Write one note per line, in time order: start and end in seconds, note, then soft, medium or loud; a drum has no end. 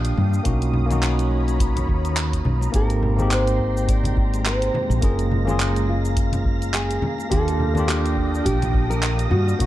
0.00 0.11 A#1 loud
0.00 0.43 A#3 medium
0.00 0.44 D4 medium
0.00 0.48 D4 medium
0.00 0.47 F4 medium
0.00 2.76 F4 medium
0.00 0.47 G4 loud
0.00 0.41 F5 medium
0.00 2.76 F5 medium
0.00 0.44 G5 medium
0.00 2.70 D#6 medium
0.05 closed hi-hat soft
0.05 cabasa soft
0.17 0.38 G2 medium
0.17 high conga medium
0.17 low conga medium
0.34 cabasa medium
0.43 1.83 B1 medium
0.43 0.85 A#3 medium
0.43 0.86 C#4 medium
0.43 0.86 D#4 medium
0.43 0.87 F#4 medium
0.43 2.72 C#5 medium
0.43 7.27 A#5 medium
0.43 2.72 B5 medium
0.43 kick loud
0.43 closed hi-hat medium
0.43 cabasa soft
0.62 closed hi-hat soft
0.62 cabasa soft
0.73 low conga medium
0.86 2.69 A#3 medium
0.86 2.70 C#4 medium
0.90 2.71 D#4 medium
0.90 2.72 F#4 medium
0.90 closed hi-hat soft
0.90 high conga medium
0.90 cabasa medium
1.03 clap medium
1.03 closed hi-hat medium
1.03 cabasa soft
1.19 closed hi-hat soft
1.19 cabasa soft
1.31 high bongo soft
1.48 closed hi-hat soft
1.48 cabasa medium
1.60 kick loud
1.60 closed hi-hat medium
1.60 high bongo medium
1.60 cabasa medium
1.76 closed hi-hat soft
1.76 high conga medium
1.76 low conga loud
1.76 cabasa soft
1.88 2.40 D#2 medium
1.88 kick medium
2.05 closed hi-hat soft
2.05 cabasa medium
2.17 clap loud
2.17 closed hi-hat medium
2.17 cabasa medium
2.33 kick medium
2.33 closed hi-hat soft
2.33 cabasa soft
2.45 2.67 B1 medium
2.45 high conga medium
2.45 low conga medium
2.61 high bongo medium
2.61 cabasa medium
2.72 4.68 G#1 medium
2.72 7.28 G#3 medium
2.72 3.14 A#3 medium
2.72 3.14 C4 medium
2.72 3.15 D#4 medium
2.72 3.15 G4 medium
2.72 3.21 A#4 medium
2.72 5.01 G5 medium
2.72 5.01 C6 medium
2.72 9.66 A#6 medium
2.72 kick loud
2.72 closed hi-hat medium
2.72 cabasa medium
2.90 closed hi-hat soft
2.90 cabasa soft
3.03 low conga medium
3.16 4.98 A#3 medium
3.16 5.00 C4 medium
3.16 5.00 D#4 medium
3.16 high conga medium
3.16 cabasa medium
3.21 5.01 G4 medium
3.21 3.32 G#4 medium
3.31 3.85 C5 medium
3.31 clap medium
3.31 closed hi-hat medium
3.31 cabasa soft
3.47 closed hi-hat soft
3.47 cabasa soft
3.60 kick medium
3.77 cabasa medium
3.88 4.46 D5 medium
3.88 kick loud
3.88 closed hi-hat medium
3.88 cabasa medium
4.04 closed hi-hat soft
4.04 high conga medium
4.04 low conga medium
4.04 cabasa soft
4.17 kick medium
4.17 high bongo medium
4.34 closed hi-hat soft
4.34 cabasa medium
4.46 5.03 C5 medium
4.46 clap loud
4.46 closed hi-hat medium
4.46 cabasa medium
4.62 closed hi-hat soft
4.62 cabasa soft
4.74 high conga medium
4.74 low conga loud
4.90 4.99 A#1 medium
4.90 cabasa medium
5.01 6.97 F#1 medium
5.01 5.43 A#3 medium
5.01 5.44 C#4 medium
5.01 5.44 F4 medium
5.01 5.44 G#4 medium
5.01 5.47 A#4 medium
5.01 9.56 F5 medium
5.01 kick loud
5.01 closed hi-hat medium
5.01 cabasa medium
5.19 closed hi-hat soft
5.19 cabasa soft
5.31 low conga medium
5.45 7.27 A#3 medium
5.45 7.28 C#4 medium
5.45 7.29 F4 medium
5.45 5.90 G#4 medium
5.45 high conga medium
5.45 cabasa medium
5.51 7.30 G#4 loud
5.60 clap loud
5.60 closed hi-hat medium
5.60 cabasa medium
5.76 closed hi-hat soft
5.76 cabasa soft
5.89 6.71 F4 medium
6.05 cabasa medium
6.17 kick loud
6.17 closed hi-hat medium
6.17 cabasa medium
6.32 closed hi-hat soft
6.32 high conga medium
6.32 low conga medium
6.32 cabasa soft
6.46 kick loud
6.62 closed hi-hat soft
6.62 cabasa medium
6.74 7.30 G#4 medium
6.74 clap loud
6.74 closed hi-hat medium
6.74 cabasa medium
6.91 closed hi-hat soft
6.91 cabasa soft
7.02 high conga medium
7.02 low conga loud
7.18 high bongo medium
7.18 cabasa medium
7.30 8.40 D#2 medium
7.30 7.71 A#3 medium
7.30 7.72 D4 medium
7.30 9.58 D4 medium
7.30 7.72 F4 medium
7.30 7.73 G4 loud
7.30 7.87 A4 medium
7.30 9.58 G5 medium
7.30 9.66 D#6 medium
7.30 kick loud
7.30 closed hi-hat medium
7.30 cabasa medium
7.48 closed hi-hat soft
7.48 cabasa soft
7.60 low conga medium
7.74 9.56 A#3 medium
7.74 9.57 D4 medium
7.74 9.58 F4 medium
7.74 high conga medium
7.74 cabasa medium
7.80 9.59 G4 medium
7.88 8.44 G4 medium
7.88 clap medium
7.88 closed hi-hat medium
7.88 cabasa medium
8.06 closed hi-hat soft
8.06 cabasa soft
8.17 kick medium
8.35 cabasa medium
8.45 9.26 A#1 loud
8.45 8.90 G4 medium
8.45 kick loud
8.45 closed hi-hat medium
8.45 cabasa medium
8.62 closed hi-hat soft
8.62 high conga medium
8.62 low conga medium
8.62 cabasa soft
8.74 kick loud
8.74 high bongo soft
8.90 9.31 A#4 medium
8.90 closed hi-hat soft
8.90 cabasa medium
9.03 clap loud
9.03 closed hi-hat medium
9.03 cabasa medium
9.19 closed hi-hat soft
9.19 cabasa soft
9.31 9.53 G2 medium
9.31 9.66 F#4 medium
9.31 high conga loud
9.31 low conga medium
9.48 cabasa medium
9.59 9.66 B1 medium
9.59 9.66 A#3 medium
9.59 9.66 C#4 medium
9.59 9.66 D#4 medium
9.59 9.66 F#4 loud
9.59 9.66 C#5 medium
9.59 9.66 F#5 medium
9.59 9.66 A#5 medium
9.59 kick loud
9.59 closed hi-hat medium
9.59 cabasa medium